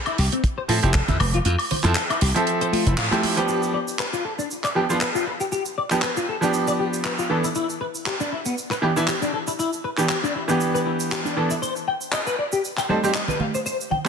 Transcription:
0.06 E4, closed hi-hat, high woodblock
0.18 C2 G4, open hi-hat
0.32 C4, closed hi-hat
0.44 kick, closed hi-hat
0.58 C5
0.68 A2 F3 C4 E4 F4 A4, open hi-hat, high conga
0.82 F1 F3 C4 E4 G4, closed hi-hat
0.94 A4, kick, clap, closed hi-hat
1.08 F2 E4, kick, closed hi-hat, low conga
1.20 F1 B4, open hi-hat, high conga, low conga, high woodblock
1.34 F4, closed hi-hat
1.45 F2 F4, closed hi-hat
1.59 open hi-hat, high woodblock
1.71 C5, open hi-hat, low conga
1.83 F2 F3 C4 E4 A4, clap, closed hi-hat
1.95 A4, clap, closed hi-hat
2.10 E4, closed hi-hat, high woodblock
2.21 C2 G4, open hi-hat
2.34 F3 C4 A4 E5, closed hi-hat
2.47 closed hi-hat
2.61 C5, closed hi-hat
2.72 F4, open hi-hat, high conga
2.86 F1 E4, closed hi-hat
2.98 A2 F5, clap, closed hi-hat
3.11 F3 C4 E4 G4 A4, closed hi-hat, high conga
3.23 E4, open hi-hat, high conga
3.37 F3 B3 D4 G4 C5, closed hi-hat
3.48 G4, shaker
3.63 shaker
3.74 D5
3.88 shaker
3.99 B4, clap, shaker
4.13 F4, shaker
4.25 A4
4.38 D4, shaker
4.51 shaker
4.64 D5, clap, shaker
4.75 F3 B3 D4 G4
4.89 F3 B3 D4 F4, shaker
5.01 B4, clap, shaker
5.15 F4, shaker
5.27 B4
5.40 G4, shaker
5.52 G4, shaker
5.66 shaker
5.78 D5
5.90 F3 B3 D4 G4, clap, shaker
6.02 B4, clap, shaker
6.17 F4, shaker
6.29 A4
6.41 F3 B3 D4 G4, shaker
6.54 shaker
6.68 D5, shaker
6.79 G4
6.94 shaker
7.05 B4, clap, shaker
7.19 F4, shaker
7.30 E3 B3 D4 A4
7.44 E4, shaker
7.55 E4, shaker
7.70 shaker
7.81 B4
7.95 shaker
8.06 G4, clap, shaker
8.20 D4, shaker
8.32 E4
8.46 B3, shaker
8.58 shaker
8.71 B4, clap, shaker
8.82 E3 B3 D4 E4 G4
8.96 E3 B3 D4 E4, shaker
9.08 G4, clap, shaker
9.22 D4, shaker
9.34 A4
9.47 E4, shaker
9.59 E4, shaker
9.73 shaker
9.84 B4
9.97 E3 B3 D4 G4, clap, shaker
10.09 G4, clap, shaker
10.23 D4, shaker
10.35 E4
10.48 E3 B3 D4 G4, shaker
10.61 shaker
10.74 B4, shaker
10.86 E4
11.00 shaker
11.11 G4, clap, shaker
11.25 D4, shaker
11.36 E3 B3 D4 A4
11.51 E4, shaker
11.62 C5, shaker
11.76 shaker
11.88 G5
12.01 shaker
12.12 D#5, clap, shaker
12.27 B4, shaker
12.39 D5
12.52 G4, shaker
12.65 shaker
12.77 G5, clap, shaker
12.89 G3 C4 D#4 A4 C5, high conga
13.03 G3 C4 D#4 G4, shaker
13.14 D#5, clap, shaker
13.28 B4, low conga, shaker
13.40 F5, high conga, low conga
13.55 C5, shaker
13.66 C5, shaker
13.81 shaker
13.91 G5, low conga
14.05 G3 C4

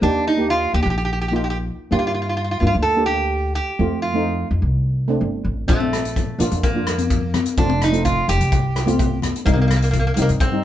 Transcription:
0.01 D#2 A#3 D4 D#4 G4
0.27 D#4
0.37 A#3 D#4 G4
0.50 F4
0.74 D#2 G4
0.83 A#1 G4
0.90 G4
0.98 G4
1.05 G4
1.13 G4
1.21 G4
1.28 A#3 G4
1.33 D#4 F4 G4
1.44 G4
1.50 G4
1.91 G2 A#3 D4 F4 G4
1.99 F4
2.07 F4
2.14 F4
2.22 F4
2.29 F4
2.37 F4
2.44 F4
2.51 F4
2.60 G2 A#3 D4 F4
2.67 F4
2.75 D2
2.82 A4
2.96 A#3 D4 G4
3.06 G4
3.55 G4
3.79 F2 A3 C4 F4
4.02 F4
4.14 A3 C4 D#4
4.51 F2
4.62 C2
5.08 A3 C4 D4
5.21 G1
5.44 A1
5.68 A#1 A3 C4 D4 F4, kick, closed hi-hat
5.80 high conga
5.93 cross-stick, closed hi-hat
6.05 closed hi-hat
6.16 kick, closed hi-hat
6.39 A#1 A#3 D4 F4, closed hi-hat, low conga
6.51 F2, closed hi-hat
6.63 A#3, kick, closed hi-hat
6.75 A#3 D4 F4
6.87 cross-stick, closed hi-hat
6.98 closed hi-hat, high conga
7.10 kick, closed hi-hat
7.34 cross-stick, closed hi-hat, high conga, low conga
7.46 closed hi-hat
7.57 F1 A3 C4 D4 F4, kick, closed hi-hat
7.70 high conga
7.82 D#4, cross-stick, closed hi-hat
7.92 A3 C4 F4, closed hi-hat
8.05 F4, kick, closed hi-hat
8.28 F1 G4, closed hi-hat, low conga
8.41 C2, closed hi-hat
8.52 kick, closed hi-hat
8.76 cross-stick, closed hi-hat
8.86 A3 C4 F4, closed hi-hat, high conga
8.99 kick, closed hi-hat
9.22 cross-stick, closed hi-hat, high conga, low conga
9.36 closed hi-hat
9.45 C2 G3 A#3 C4 D#4, kick, closed hi-hat
9.54 A#3
9.58 A#3, high conga
9.68 A#3, cross-stick, closed hi-hat
9.76 A#3
9.82 A#3, closed hi-hat
9.91 A#3, kick, closed hi-hat
9.99 A#3
10.07 A#3
10.14 C2 G3 A#3 C4, closed hi-hat, low conga
10.18 A#3 D#4
10.29 G2, closed hi-hat
10.40 C4, kick, closed hi-hat
10.52 G3 C4 D#4

